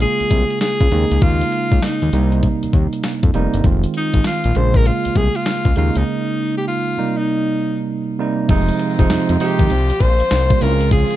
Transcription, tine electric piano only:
0.00 0.69 C#3 medium
0.00 0.69 G#3 medium
0.00 0.70 A#3 medium
0.00 0.70 F4 medium
0.92 1.90 C#3 medium
0.92 1.90 G#3 medium
0.92 1.91 A#3 medium
0.92 1.91 D#4 medium
2.13 3.12 C3 medium
2.13 3.12 G3 medium
2.13 3.12 A#3 medium
2.13 3.12 D#4 medium
3.34 3.56 C3 medium
3.34 3.56 G3 medium
3.34 3.57 A#3 medium
3.34 3.57 D#4 loud
3.65 4.32 D#3 medium
3.65 4.33 G#3 medium
3.65 4.33 C4 medium
3.65 4.33 F4 medium
4.55 5.54 C#3 medium
4.55 5.54 G#3 medium
4.55 5.54 A#3 medium
4.55 5.54 F4 medium
5.76 6.75 C#3 medium
5.76 6.75 G#3 medium
5.76 6.75 A#3 medium
5.76 6.75 D#4 medium
6.98 7.96 C3 medium
6.98 7.97 G3 medium
6.98 7.97 A#3 medium
6.98 7.97 D#4 medium
8.19 8.41 C3 medium
8.19 8.41 G3 medium
8.19 8.41 A#3 medium
8.19 8.42 D#4 medium
8.49 8.78 C3 medium
8.49 8.78 F3 medium
8.49 8.78 G#3 medium
8.49 8.79 D#4 loud
8.99 9.27 C3 medium
8.99 9.27 F3 medium
8.99 9.27 G#3 medium
8.99 9.27 D#4 loud
9.40 9.70 C3 medium
9.40 9.70 F3 medium
9.40 9.71 G#3 medium
9.40 9.71 D#4 loud
10.51 10.61 C3 medium
10.51 10.62 G3 medium
10.51 10.62 A#3 medium
10.51 10.62 F4 medium
10.61 11.16 C#3 medium
10.61 11.16 G#3 medium
10.61 11.16 C4 medium
10.61 10.70 E4 medium
10.69 11.16 F4 medium

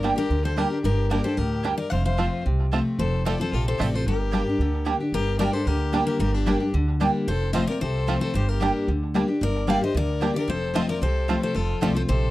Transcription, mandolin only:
0.03 0.12 A#3 medium
0.03 0.13 G4 medium
0.03 0.13 D5 medium
0.03 0.13 G5 loud
0.56 0.66 A#3 medium
0.56 0.66 G4 medium
0.56 0.66 D5 medium
0.56 0.67 G5 loud
1.10 1.19 A#3 medium
1.10 1.20 G4 medium
1.10 1.20 D5 medium
1.10 1.20 G5 medium
1.63 1.73 A#3 medium
1.63 1.73 G4 medium
1.63 1.74 D5 medium
1.63 1.74 G5 loud
2.18 2.27 C4 medium
2.18 2.27 F4 medium
2.18 2.28 C5 medium
2.18 2.28 A5 loud
2.71 2.81 C4 medium
2.71 2.81 F4 medium
2.71 2.81 C5 loud
2.71 2.82 A5 loud
3.25 3.35 C4 medium
3.25 3.35 F4 medium
3.25 3.35 C5 medium
3.25 3.35 A5 loud
3.78 3.88 C4 medium
3.78 3.88 F4 medium
3.78 3.88 C5 loud
3.78 3.88 A5 medium
4.31 4.41 A#3 medium
4.31 4.42 G4 medium
4.31 4.42 D5 medium
4.31 4.42 G5 loud
4.85 4.95 A#3 medium
4.85 4.95 G4 medium
4.85 4.95 D5 medium
4.85 4.95 G5 loud
5.39 5.49 A#3 loud
5.39 5.49 G4 medium
5.39 5.49 D5 loud
5.39 5.49 G5 medium
5.92 6.02 A#3 medium
5.92 6.02 G4 medium
5.92 6.02 D5 medium
5.92 6.03 G5 medium
6.46 6.56 A#3 medium
6.46 6.56 G4 medium
6.46 6.56 D5 loud
6.46 6.56 G5 loud
7.00 7.10 A#3 medium
7.00 7.10 G4 medium
7.00 7.10 D5 loud
7.00 7.10 G5 medium
7.53 7.63 C4 medium
7.53 7.63 F4 medium
7.53 7.63 C5 medium
7.53 7.64 A5 loud
8.07 8.17 C4 medium
8.07 8.17 F4 medium
8.07 8.17 C5 medium
8.07 8.17 A5 loud
8.60 8.70 A#3 medium
8.60 8.70 G4 loud
8.60 8.70 D5 medium
8.60 8.70 G5 medium
9.14 9.24 A#3 medium
9.14 9.24 G4 medium
9.14 9.24 D5 medium
9.14 9.24 G5 medium
9.67 9.77 A#3 medium
9.67 9.77 G4 medium
9.67 9.77 D5 medium
9.67 9.78 G5 loud
10.21 10.30 A#3 medium
10.21 10.31 G4 medium
10.21 10.31 D5 loud
10.21 10.31 G5 medium
10.74 10.84 C4 medium
10.74 10.84 F4 medium
10.74 10.84 C5 loud
10.74 10.85 A5 medium
11.28 11.38 C4 medium
11.28 11.38 F4 medium
11.28 11.38 C5 medium
11.28 11.38 A5 medium
11.81 11.91 C4 medium
11.81 11.91 F4 loud
11.81 11.91 C5 medium
11.81 11.92 A5 loud

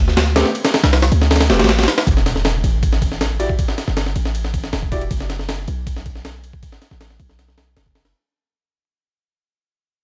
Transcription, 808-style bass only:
0.00 0.44 D2 medium
0.83 1.10 C2 medium
1.12 1.51 D2 medium
1.50 1.61 E1 loud
1.60 1.86 A1 medium
2.07 2.62 E1 loud
2.64 3.48 A1 medium
3.88 4.14 G1 medium
4.16 4.72 A1 medium
4.73 5.09 E1 medium
5.11 5.66 F#1 medium
5.68 6.52 B1 medium
6.91 7.18 A1 medium
7.20 7.76 B1 medium
7.77 8.13 F#1 medium

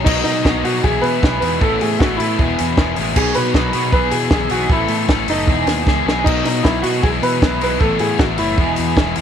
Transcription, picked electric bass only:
0.06 0.22 B1 medium
0.25 0.41 B2 medium
0.45 0.61 B1 medium
0.63 0.80 B2 medium
0.84 1.00 B1 loud
1.03 1.19 B2 medium
1.22 1.38 B1 medium
1.42 1.58 E2 medium
1.61 1.77 A1 loud
1.83 1.98 A2 medium
2.00 2.16 A1 medium
2.20 2.36 A2 medium
2.39 2.55 E1 medium
2.60 2.75 E2 medium
2.77 2.93 E1 loud
2.98 3.13 A1 medium
3.16 3.32 B1 loud
3.37 3.52 B2 medium
3.54 3.71 B1 loud
3.75 3.90 B2 medium
3.93 4.09 B1 medium
4.12 4.29 B2 medium
4.31 4.47 B1 medium
4.51 4.67 B1 medium
4.69 4.86 A1 medium
4.89 5.06 A2 medium
5.09 5.25 A1 loud
5.28 5.44 F#1 medium
5.47 5.64 E1 medium
5.67 5.84 D#2 medium
5.87 6.04 C#2 medium
6.05 6.23 B1 medium
6.26 6.42 B1 medium
6.44 6.61 B2 medium
6.65 6.81 B1 loud
6.83 7.00 B2 medium
7.03 7.20 B1 medium
7.22 7.39 B2 medium
7.42 7.58 B1 loud
7.61 7.78 B1 medium
7.81 7.97 A1 loud
8.00 8.17 A2 medium
8.19 8.36 A1 loud
8.39 8.55 F#1 medium
8.58 8.75 E1 medium
8.79 8.95 E2 medium
8.97 9.13 E1 loud
9.17 9.21 E2 medium

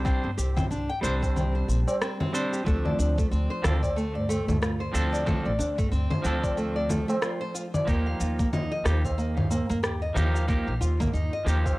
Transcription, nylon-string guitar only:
0.05 0.22 C4 loud
0.23 0.36 C5 medium
0.38 0.55 G4 medium
0.56 0.65 C4 medium
0.71 0.89 D4 medium
0.89 1.02 G5 medium
1.03 1.14 C5 medium
1.22 1.35 C5 medium
1.36 1.53 C4 medium
1.55 1.67 C5 medium
1.68 1.79 C4 medium
1.87 1.95 D5 medium
2.01 2.18 C4 medium
2.20 2.33 C4 medium
2.34 2.52 D4 medium
2.53 2.61 G4 medium
2.66 2.83 A3 loud
2.85 2.97 D5 medium
2.99 3.16 D4 loud
3.18 3.26 A3 medium
3.31 3.50 C4 medium
3.50 3.63 C5 medium
3.64 3.75 F4 medium
3.83 3.95 D5 medium
3.96 4.14 A3 medium
4.15 4.28 D5 medium
4.29 4.46 A3 medium
4.48 4.56 A3 loud
4.62 4.79 F4 loud
4.80 4.94 C5 medium
4.94 5.05 F4 medium
5.13 5.25 D5 medium
5.26 5.44 A3 medium
5.45 5.58 D5 medium
5.59 5.77 D4 loud
5.78 5.86 A3 loud
5.92 6.10 C4 loud
6.10 6.24 C5 loud
6.24 6.36 F4 loud
6.43 6.56 D5 medium
6.57 6.75 A3 medium
6.76 6.89 D5 medium
6.89 7.07 A3 loud
7.08 7.17 A3 loud
7.22 7.39 F4 loud
7.41 7.54 C5 loud
7.54 7.66 F4 medium
7.74 7.87 D5 medium
7.87 8.05 A#3 loud
8.06 8.19 F5 medium
8.20 8.38 F4 medium
8.39 8.47 A#3 loud
8.53 8.71 D#4 loud
8.72 8.85 D#5 loud
8.85 8.97 G4 loud
9.04 9.17 F5 medium
9.18 9.35 A#3 medium
9.37 9.50 F5 medium
9.51 9.68 A#3 medium
9.70 9.78 A#3 loud
9.83 10.01 G4 loud
10.02 10.15 D#5 medium
10.15 10.27 G4 loud
10.35 10.47 F5 medium
10.48 10.66 A#3 loud
10.67 10.80 F5 medium
10.81 10.98 F4 loud
11.00 11.08 A#3 loud
11.13 11.32 D#4 loud
11.33 11.46 D#5 loud
11.47 11.58 G4 loud
11.65 11.78 F5 medium

